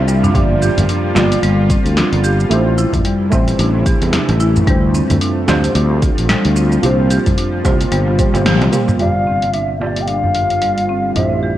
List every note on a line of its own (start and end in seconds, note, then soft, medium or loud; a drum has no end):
0.00 0.28 C2 medium
0.00 0.32 C3 medium
0.00 2.47 F3 medium
0.00 4.63 G3 medium
0.00 2.47 A#3 medium
0.00 0.33 F4 loud
0.08 0.23 G3 medium
0.08 shaker medium
0.24 0.34 D4 loud
0.24 darbuka ka soft
0.24 darbuka dum medium
0.24 shaker soft
0.33 0.68 G1 medium
0.33 2.49 D3 medium
0.33 1.12 A#3 medium
0.33 0.44 D4 medium
0.33 1.13 F4 medium
0.33 2.49 F4 loud
0.33 1.14 G4 medium
0.33 1.14 D5 loud
0.33 kick loud
0.33 open hi-hat medium
0.33 shaker soft
0.62 0.88 G4 medium
0.62 shaker medium
0.78 0.85 G1 medium
0.78 open hi-hat soft
0.78 darbuka ka soft
0.78 darbuka dum medium
0.78 shaker soft
0.89 1.15 D4 medium
0.89 open hi-hat medium
0.89 shaker soft
1.14 1.35 G1 medium
1.14 2.47 A#3 medium
1.14 2.48 F4 medium
1.14 1.31 F4 medium
1.14 2.49 G4 medium
1.14 2.49 D5 medium
1.14 snare medium
1.14 darbuka tek medium
1.14 shaker medium
1.32 open hi-hat soft
1.32 darbuka ka medium
1.32 shaker soft
1.43 1.76 G1 loud
1.43 1.52 G3 loud
1.43 open hi-hat soft
1.43 shaker soft
1.70 1.96 C4 medium
1.70 kick loud
1.70 open hi-hat soft
1.70 shaker medium
1.85 2.01 D2 medium
1.85 open hi-hat soft
1.85 shaker soft
1.97 2.06 D4 medium
1.97 snare medium
1.97 open hi-hat medium
1.97 darbuka ka soft
1.97 shaker soft
2.13 2.44 G1 loud
2.13 open hi-hat soft
2.24 2.50 G4 medium
2.24 shaker medium
2.40 shaker soft
2.49 2.84 A1 loud
2.49 4.65 C3 medium
2.49 4.65 E3 medium
2.49 3.28 A3 medium
2.49 6.79 A3 medium
2.49 2.77 D4 medium
2.49 3.29 E4 medium
2.49 4.65 E4 medium
2.49 3.30 G4 medium
2.49 3.30 C5 loud
2.49 open hi-hat medium
2.49 shaker soft
2.67 darbuka tek soft
2.78 2.93 E4 medium
2.78 shaker medium
2.93 3.01 A1 medium
2.93 kick medium
2.93 open hi-hat soft
2.93 darbuka ka medium
2.93 darbuka dum medium
2.93 shaker soft
3.05 3.14 G3 loud
3.05 open hi-hat medium
3.05 shaker soft
3.30 3.51 A1 medium
3.30 4.63 A3 medium
3.30 3.58 C4 medium
3.30 4.64 E4 medium
3.30 4.65 G4 medium
3.30 4.65 C5 loud
3.30 kick medium
3.30 darbuka tek medium
3.30 shaker medium
3.48 open hi-hat soft
3.48 darbuka ka soft
3.48 shaker soft
3.59 3.93 A1 loud
3.59 3.68 D4 medium
3.59 open hi-hat medium
3.59 shaker soft
3.75 darbuka tek soft
3.86 4.12 G4 medium
3.86 kick loud
3.86 open hi-hat medium
3.86 shaker medium
4.02 4.17 E2 medium
4.02 open hi-hat soft
4.02 darbuka tek medium
4.02 shaker soft
4.13 4.39 D4 medium
4.13 snare medium
4.13 open hi-hat medium
4.13 darbuka ka soft
4.13 shaker soft
4.29 4.61 A1 loud
4.29 open hi-hat soft
4.29 darbuka tek medium
4.40 4.55 E4 medium
4.40 shaker medium
4.56 darbuka ka soft
4.56 darbuka dum medium
4.56 shaker soft
4.65 5.01 D2 medium
4.65 6.81 D3 medium
4.65 8.95 F3 medium
4.65 4.76 G3 loud
4.65 5.45 A3 medium
4.65 6.81 C4 medium
4.65 5.45 D4 medium
4.65 8.96 F4 medium
4.65 5.46 F4 medium
4.65 5.47 C5 loud
4.65 kick loud
4.65 open hi-hat medium
4.65 shaker soft
4.94 5.20 C4 medium
4.94 shaker medium
5.10 5.17 D2 medium
5.10 open hi-hat soft
5.10 darbuka ka soft
5.10 darbuka dum medium
5.10 shaker soft
5.21 5.30 D4 medium
5.21 open hi-hat medium
5.21 shaker soft
5.46 5.67 D2 medium
5.46 6.80 A3 medium
5.46 6.80 D4 medium
5.46 6.81 F4 medium
5.46 5.74 G4 medium
5.46 6.82 C5 loud
5.46 snare medium
5.46 darbuka tek medium
5.46 shaker medium
5.64 open hi-hat medium
5.64 darbuka ka medium
5.64 shaker soft
5.75 6.09 D2 loud
5.75 6.01 D4 medium
5.75 open hi-hat medium
5.75 shaker soft
6.02 6.17 F4 medium
6.02 kick loud
6.02 open hi-hat soft
6.02 shaker medium
6.18 6.34 A1 medium
6.18 open hi-hat soft
6.18 shaker soft
6.29 6.38 G3 loud
6.29 snare medium
6.29 open hi-hat medium
6.29 darbuka ka soft
6.29 shaker soft
6.45 6.77 D2 loud
6.45 open hi-hat soft
6.56 6.82 C4 medium
6.56 shaker medium
6.72 shaker soft
6.81 7.17 C2 medium
6.81 8.98 C3 medium
6.81 8.98 G3 medium
6.81 7.61 A#3 medium
6.81 8.98 A#3 medium
6.81 6.92 D4 medium
6.81 7.61 F4 medium
6.81 7.62 G4 medium
6.81 open hi-hat medium
6.81 shaker soft
6.85 7.63 C5 loud
7.00 darbuka tek soft
7.10 7.36 G4 medium
7.10 open hi-hat soft
7.10 darbuka ka soft
7.10 shaker medium
7.26 7.33 C2 medium
7.26 kick medium
7.26 open hi-hat soft
7.26 darbuka ka soft
7.26 darbuka dum medium
7.26 shaker soft
7.38 7.63 D4 medium
7.38 open hi-hat medium
7.38 shaker soft
7.63 7.83 C2 medium
7.63 8.16 A#3 medium
7.63 8.16 F4 medium
7.63 7.80 F4 medium
7.63 8.16 G4 medium
7.63 8.17 C5 medium
7.63 kick loud
7.63 open hi-hat soft
7.63 darbuka tek medium
7.63 shaker medium
7.80 open hi-hat soft
7.80 darbuka ka medium
7.80 shaker soft
7.92 8.25 G1 medium
7.92 8.01 G3 loud
7.92 open hi-hat medium
7.92 shaker soft
8.08 darbuka tek soft
8.18 8.33 G3 medium
8.18 8.30 A#3 medium
8.18 8.30 F4 medium
8.18 8.31 G4 medium
8.18 8.31 C5 medium
8.18 kick loud
8.18 open hi-hat medium
8.18 shaker medium
8.34 8.61 G1 loud
8.34 8.70 A#3 medium
8.34 8.70 F4 medium
8.34 8.70 G4 medium
8.34 8.70 C5 loud
8.34 open hi-hat soft
8.34 darbuka tek medium
8.34 shaker soft
8.46 8.61 G4 medium
8.46 snare medium
8.46 open hi-hat medium
8.46 high tom medium
8.46 darbuka ka soft
8.46 shaker soft
8.61 8.68 C2 loud
8.61 open hi-hat soft
8.61 high tom medium
8.61 darbuka tek medium
8.72 8.87 G3 medium
8.72 8.96 A#3 medium
8.72 8.97 F4 medium
8.72 8.97 G4 medium
8.72 8.98 C5 medium
8.72 open hi-hat soft
8.72 mid tom medium
8.72 shaker medium
8.88 8.99 G3 medium
8.88 mid tom medium
8.88 darbuka ka soft
8.88 darbuka dum medium
8.88 shaker soft
8.97 11.14 G1 medium
8.97 11.14 D3 medium
8.97 11.14 F3 medium
8.97 11.58 G3 medium
8.97 9.09 G3 medium
8.97 9.77 A#3 medium
8.97 11.14 A#3 medium
8.97 9.78 F4 medium
8.97 11.14 F4 medium
8.97 9.78 G4 medium
8.97 9.55 F5 loud
8.97 open hi-hat soft
9.01 9.79 D5 medium
9.27 9.53 C4 medium
9.27 darbuka ka soft
9.42 open hi-hat soft
9.42 darbuka ka soft
9.54 9.63 D4 medium
9.54 9.79 E5 medium
9.54 open hi-hat soft
9.79 11.12 A#3 medium
9.79 11.13 F4 medium
9.79 10.07 G4 medium
9.79 11.13 G4 medium
9.79 10.03 D5 medium
9.79 11.14 D5 medium
9.79 darbuka tek medium
9.96 open hi-hat soft
9.96 darbuka ka soft
10.01 10.08 G5 medium
10.07 10.34 D4 medium
10.07 11.14 F5 loud
10.07 open hi-hat soft
10.24 darbuka dum medium
10.35 10.50 F4 medium
10.35 open hi-hat soft
10.50 open hi-hat soft
10.62 10.71 G3 medium
10.62 open hi-hat soft
10.62 darbuka ka soft
10.78 open hi-hat soft
10.89 11.15 C4 medium
11.14 11.58 A1 medium
11.14 11.58 C3 medium
11.14 11.58 E3 medium
11.14 11.58 A3 medium
11.14 11.25 D4 medium
11.14 11.58 E4 medium
11.14 11.58 G4 medium
11.14 11.58 E5 medium
11.14 open hi-hat soft
11.14 darbuka dum medium
11.18 11.58 C5 medium
11.33 darbuka tek soft
11.43 11.58 G4 medium
11.43 darbuka ka soft